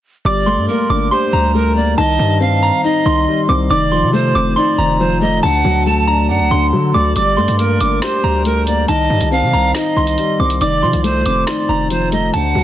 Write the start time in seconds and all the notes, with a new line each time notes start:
0.25 G1 G3 D5 D6
0.46 A3 C6
0.57 G2
0.68 A#3 A#4
0.90 G1 D4 D6
1.11 G4 C5 C6
1.33 D2 G3 A#5
1.54 A3 A#4
1.76 A#3 D5
1.97 C2 D#3 D#5 A5
2.19 G2 G3
2.40 C4 F5
2.63 A#5
2.84 D#4 D#5
3.06 C2 D#3 C6
3.27 G3
3.48 C2 C4 D6
3.70 F1 D#3 D5 D6
3.92 F3 C6
4.03 C3
4.13 A3 C5
4.35 F1 C4 D6
4.56 D#4 D5 C6
4.78 F1 D#3 A#5
5.00 F3 C5
5.21 A3 D#5
5.43 D2 D3 F#5 A5
5.65 D2 F#3
5.86 A3 A5
6.08 D4 A#5
6.29 F#2 D5 F#5
6.40 D2
6.51 D2 D3 C6
6.73 D3 F#3
6.94 D2 A3 D5 D6
7.16 G1 G3 D5 D6, closed hi-hat
7.37 G2 A3 C6
7.48 G2, closed hi-hat
7.59 A#3 A#4, closed hi-hat
7.80 G1 D4 D6, closed hi-hat
8.02 G4 C5 C6, snare
8.24 D2 G3 A#5
8.45 A3 A#4, closed hi-hat
8.67 A#3 D5, closed hi-hat
8.88 C2 D#3 D#5 A5, closed hi-hat
9.10 G2 G3
9.21 C2, closed hi-hat
9.31 C4 F5
9.42 C3
9.53 C2 A#5
9.75 D#4 D#5, snare, closed hi-hat
9.96 C2 D#3 C6
10.07 closed hi-hat
10.18 G3, closed hi-hat
10.39 C2 C4 D6
10.50 closed hi-hat
10.61 F1 D#3 D5 D6, closed hi-hat
10.83 C3 F3 C6
10.93 C2, closed hi-hat
11.04 A3 C5, closed hi-hat
11.26 F1 C4 D6, closed hi-hat
11.47 D#4 D5 C6, snare
11.69 F1 D#3 A#5
11.90 F3 C5, closed hi-hat
12.12 A3 D#5, closed hi-hat
12.34 D2 D3 F#5 A5, closed hi-hat
12.55 D2 F#3